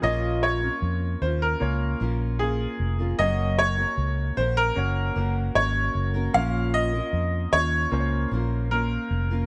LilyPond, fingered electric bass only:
\new Staff \with { instrumentName = "Fingered electric bass" } { \clef bass \time 4/4 \key bes \minor \tempo 4 = 76 bes,,4 f,8 ees,8 des,8 bes,,4 f,,8 | ges,,4 des,8 bes,,8 ges,,8 ges,,8 aes,,8 ges,,8 | bes,,4 f,8 ees,8 des,8 bes,,4 f,,8 | }